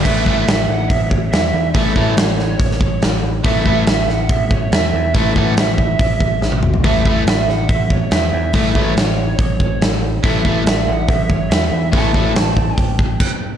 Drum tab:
CC |x---------------|----------------|----------------|----------------|
HH |----o---o---o---|o---o---o---o---|o---o---o---o---|o---o---o-------|
SD |----o-------o---|----o-o--o--o---|----o-o-----o---|----o-------o---|
T1 |----------------|----------------|----------------|-------------o--|
T2 |----------------|----------------|----------------|--------------o-|
FT |----------------|----------------|----------------|---------------o|
BD |o-o-----o-o-----|o-o-----o-o-----|o-o-----o-o-----|o-o---o-o-o-----|

CC |----------------|----------------|----------------|------------x---|
HH |o---o---o---o---|o---o---o---o---|o---o---o---o---|o---o---o-------|
SD |----o-o-----o---|----o-------o---|----o-------o---|----o-----------|
T1 |----------------|----------------|----------------|----------------|
T2 |----------------|----------------|----------------|----------------|
FT |----------------|----------------|----------------|----------------|
BD |o-o-----o-o-----|o-o-----o-o-----|o-o-----o-o-----|o-o---o-o-o-o---|